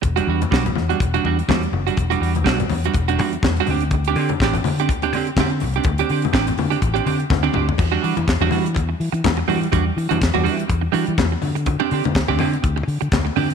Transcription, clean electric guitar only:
X:1
M:4/4
L:1/16
Q:"Swing 16ths" 1/4=124
K:Em
V:1 name="Clean electric guitar"
z [G,DF] [G,DF] z [G,DF] z2 [G,DF] z [G,DF] [G,DF] z [G,DF] z2 [G,DF] | z [G,DF] [G,DF] z [G,DF] z2 [G,DF] z [G,DF] [G,DF] z2 [G,DF] [CDG] z | z [CDG] [CDG] z [CDG] z2 [CDG] z [CDG] [CDG] z [CDG] z2 [CDG] | z [CDG] [CDG] z [CDG] z2 [CDG] z [CDG] [CDG] z2 [CDG] [CDG] z |
z [G,DF] [G,DF] z2 [G,DF] [G,DF] z6 z [G,DF] z | [G,DF] z2 [G,DF] z [G,DF] [G,DF] z3 [G,DF] z4 z | z [CDG] [CDG] z2 [CDG] [CDG] z6 z [CDG] z |]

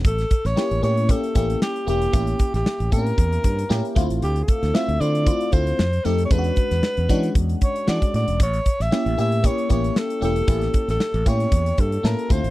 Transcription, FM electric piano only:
X:1
M:4/4
L:1/8
Q:"Swing 16ths" 1/4=115
K:Aphr
V:1 name="FM electric piano"
z2 [B,^CEG] [B,CEG] [B,CEG] [B,CEG]2 [B,CEG] | [B,^CEG]3 [B,=C^CEG]3 [B,CEG] [A,=CEF]- | [A,CEF]2 [A,CEF] [A,CEF] [A,CEF] [A,CEF] z [A,C_EG] | [^G,^CDF^F]3 [G,CDF]3 [G,CDF]2 |
z2 [B,^CEG] [B,CEG] [B,CEG] [B,CEG]2 [B,CEG] | [B,^CEG]3 [B,CEG]3 [B,CEA] [A,=CEF] |]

